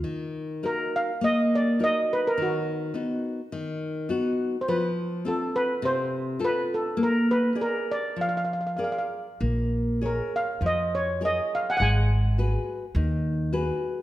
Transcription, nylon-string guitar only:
\new Staff \with { instrumentName = "Nylon-string guitar" } { \time 4/4 \key ees \minor \tempo 4 = 103 ees4 <ees' ges' bes'>4 bes4 <ees' ges' bes'>4 | dis4 <b dis' fis'>4 dis4 <b dis' fis'>4 | f4 <c' f' a'>4 c4 <c' f' a'>4 | bes4 <aes' bes' d''>4 f4 <aes' bes' d''>4 |
bes4 <aes' bes' des''>4 f4 <aes' bes' des''>4 | aes4 <ges' aes' ces''>4 ees4 <ges' aes' ces''>4 | }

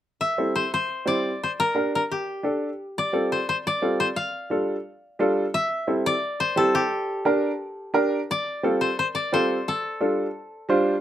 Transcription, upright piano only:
\new Staff \with { instrumentName = "Upright piano" } { \time 4/4 \key a \phrygian \tempo 4 = 174 r4 <g c' e' a'>8 r4. <g c' e' c''>8 r8 | r4 <d' g' bes'>8 r4. <d' g' a'>8 r8 | r4 <g c' f' a'>8 r4. <g c' f' a'>8 r8 | r4 <g d' f' a'>8 r4. <g d' f' a'>8 r8 |
r4 <g c' e' a'>8 r4. <g c' e' g'>8 r8 | r4 <d' g' bes'>8 r4. <d' g' bes'>8 r8 | r4 <g c' f' a'>8 r4. <g c' f' a'>8 r8 | r4 <g d' f' a'>8 r4. <g d' f' c''>8 r8 | }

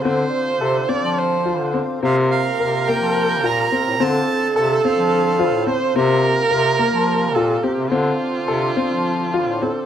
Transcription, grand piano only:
\new Staff \with { instrumentName = "Grand piano" } { \time 7/8 \key d \phrygian \tempo 4 = 106 c'4 a'8 c'4 f'8 c'8 | c'4 bes'8 bes4 f'8 c'8 | c'4 a'8 c'4 f'8 c'8 | c'4 bes'8 bes4 f'8 c'8 |
c'4 a'8 c'4 f'8 c'8 | }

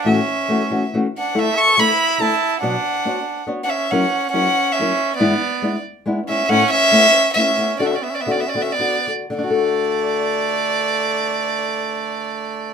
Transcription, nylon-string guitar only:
\new Staff \with { instrumentName = "Nylon-string guitar" } { \time 3/4 \key d \major \tempo 4 = 139 <a, e a cis' fis'>8 r8 <e a cis' fis'>8 <e a cis' fis'>8 <e a cis' fis'>8 r8 | <d a e' a'>8 r8 <d a e' a'>8 r8 <d a e' a'>8 r8 | <b, fis b d' fis' cis''>8 r8 <b d' fis' cis''>8 r8 <b d' fis' cis''>8 r8 | <fis cis' e' ais'>8 r8 <fis cis' e' ais'>8 r8 <fis cis' e' ais'>8 r8 |
<gis, e gis b d' e'>8 r8 <gis b d' e'>8 r8 <gis b d' e'>8 <gis b d' e'>8 | <a, a b cis' e'>8 r8 <a b cis' e'>8 r8 <a b cis' e'>8 <a b cis' e'>8 | <d d' fis' a'>8 r8 <d d' fis' a'>8 <d d' fis' a'>8 <d d' fis' a'>8 <d d' fis' a'>8 | <d d' fis' a'>2.~ |
<d d' fis' a'>2. | }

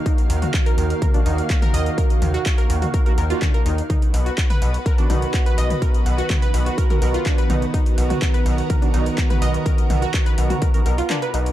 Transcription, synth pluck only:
\new Staff \with { instrumentName = "Synth pluck" } { \time 4/4 \key ces \lydian \tempo 4 = 125 ees'16 r8 ges'16 r16 bes'16 r8 bes'16 d'16 ees'16 r8 bes'16 ees''16 r16 | bes'16 r8 ges'16 r16 bes'16 r16 ges'16 bes'16 bes'16 bes'16 f'16 d'16 bes'16 ees'16 r16 | dis'16 r8 fis'16 r16 b'16 r8 bes'16 d'16 dis'16 r8 b'16 dis''16 r16 | bes'16 r8 fis'16 r16 b'16 r16 fis'16 bes'16 bes'16 bes'16 f'16 d'16 b'16 dis'16 r16 |
dis'16 r8 fis'16 r16 b'16 r8 bes'16 d'16 dis'16 r8 b'16 dis''16 r16 | bes'16 r8 fis'16 r16 b'16 r16 fis'16 bes'16 bes'16 bes'16 f'16 d'16 b'16 dis'16 r16 | }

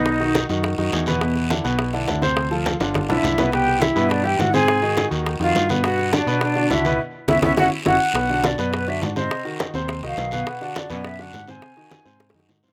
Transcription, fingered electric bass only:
\new Staff \with { instrumentName = "Fingered electric bass" } { \clef bass \time 4/4 \key b \phrygian \tempo 4 = 208 b,,4. fis,4 fis,8 e,4~ | e,4. b,,4. d,4~ | d,4. g,,4 b,,8 c,4~ | c,4. g,4. aes,4~ |
aes,4. ees,4 f,8 g,4~ | g,4. b,4. cis,4 | r4 cis,8 cis,8 fis,,8 r8 fis,,8 r8 | b,,4. fis,4. aes,4 |
r4. ees,4 c,8 b,,4 | r4. fis,4. aes,4 | r4. aes,4 ges,8 aes,4 | }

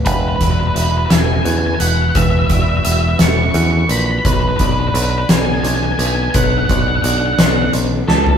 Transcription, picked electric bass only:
\new Staff \with { instrumentName = "Picked electric bass" } { \clef bass \time 6/8 \key e \mixolydian \tempo 4. = 57 e,,8 e,,8 e,,8 e,,8 e,8 e,,8 | e,,8 e,,8 e,,8 e,,8 e,8 bes,,8 | b,,8 b,,8 b,,8 b,,8 b,,8 b,,8 | b,,8 b,,8 b,,8 b,,8 b,,8 cis,8 | }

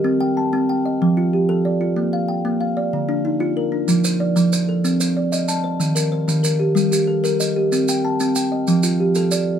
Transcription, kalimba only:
<<
  \new Staff \with { instrumentName = "Kalimba" } { \time 12/8 \key f \mixolydian \tempo 4. = 125 <g' ees''>8 g''8 a''4 g''8 ees''4 f'8 g'4 d''8 f'8~ | f'8 f''8 g''4 f''8 d''4 d'8 ees'4 bes'8 d'8~ | d'8 c''8 d''4 c''8 a'4 c''8 d''4 a''8 c''8~ | c''8 bes'8 c''4 bes'8 g'4 g'8 a'4 ees''8 g'8~ |
g'8 g''8 a''4 g''8 ees''4 f'8 g'4 d''4 | }
  \new Staff \with { instrumentName = "Kalimba" } { \time 12/8 \key f \mixolydian c'4 r8 c'4 r8 f4 r8 a'4 r8 | bes4 r8 bes4 r8 d4 r8 f'4 r8 | f4 r8 f4 r8 c'4 r8 ees''4 r8 | ees4 r8 ees4 r8 g4 r8 bes'4 r8 |
c'4 r8 c'4 r8 f4 r8 a'4 r8 | }
>>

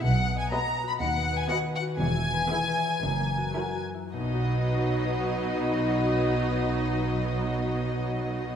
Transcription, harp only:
\new Staff \with { instrumentName = "Harp" } { \time 4/4 \key b \major \tempo 4 = 108 << { <b fis' dis''>1 | r1 | <b, b dis' fis' dis''>1~ | <b, b dis' fis' dis''>1 | } \\ { \tuplet 3/2 { b,8 b8 dis''8 b'8 dis''8 fis'8 dis8 b8 b'8 fis'8 b'8 fis'8 } | \tuplet 3/2 { e8 e'8 b'8 e''8 b'8 e'8 fis,8 ais8 fis'8 ais'8 fis'8 e'8 } | r1 | r1 | } >> }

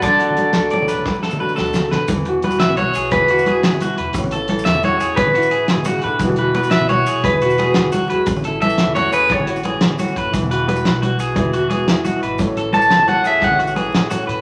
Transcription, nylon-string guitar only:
\new Staff \with { instrumentName = "Nylon-string guitar" } { \time 12/8 \key a \major \tempo 4. = 116 << { r8 a8 d'8 a8 d'8 a4 a8 d'2 | e'8 fis'2~ fis'8 e'8 fis'4 cis'16 e'4~ e'16 | cis'8 e'4 cis'4. cis'8 e'2~ e'8 | <b e' fis'>8 fis'4 e'4. e'8 fis'2~ fis'8 |
cis'8 e'4 cis'4. cis'8 e'4 cis'4. | e'8 fis'4 e'4. e'8 fis'4 e'4. | cis'8 e'4 cis'4. cis'8 e'4 cis'4. | } \\ { d4 fis4 a,4 d4 fis8 b,8 cis8 d8 | e4 b4 b,4 e4 b4 b,4 | a,4 e4 a,4 r4 e8 b,8 cis8 d8 | e4 b4 b,4 r4 b8 e8 fis8 gis8 |
r4 e4 a,4 a,4 e4 a,4 | e4 b4 b,4 e4 b4 b,4 | a,4 e4 a,4 a,4 e4 a,4 | } >> }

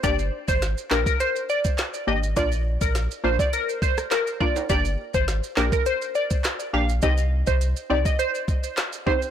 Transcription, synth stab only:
\new Staff \with { instrumentName = "Synth stab" } { \time 4/4 \key g \phrygian \tempo 4 = 103 <bes d' g'>4 r8 <bes d' g'>8 r4. <bes d' g'>8 | <bes d' f'>4 r8 <bes d' f'>8 r4. <bes d' f'>8 | <bes d' g'>4 r8 <bes d' g'>8 r4. <bes d' g'>8 | <c' ees' g'>4 r8 <c' ees' g'>8 r4. <c' ees' g'>8 | }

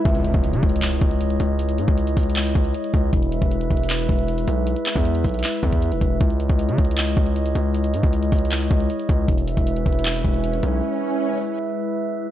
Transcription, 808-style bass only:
\new Staff \with { instrumentName = "808-style bass" } { \clef bass \time 4/4 \key cis \minor \tempo 4 = 156 cis,8. cis,8 cis16 cis,4 cis,4 cis,8~ | cis,8 gis,16 cis,8. cis,4 cis,8 r8 cis,8 | e,,8. e,,8. e,,4 e,,4 b,,8~ | b,,16 r8 e,8. b,,8 r8 e,8. dis,,16 e,,8 |
cis,8. cis,8 cis16 cis,4 cis,4 cis,8~ | cis,8 gis,16 cis,8. cis,4 cis,8 r8 cis,8 | e,,8. e,,8. e,,4 e,,4 b,,8 | r1 | }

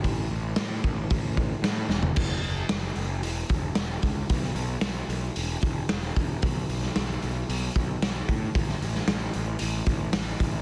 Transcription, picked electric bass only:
\new Staff \with { instrumentName = "Picked electric bass" } { \clef bass \time 4/4 \key cis \minor \tempo 4 = 113 a,,8 a,,8 a,8 a,,8 a,,4 a,8 e,,8 | fis,,8 fis,,8 fis,,8 fis,,8 e,,8 e,,8 e,,8 cis,8 | b,,8 b,,8 b,,8 b,,8 e,,8 e,,8 e,,8 e,,8 | b,,8 b,,8 b,,8 b,,8 b,,8 b,,8 b,,8 a,8 |
a,,8 a,,8 a,,8 a,,8 a,,8 a,,8 a,,8 a,,8 | }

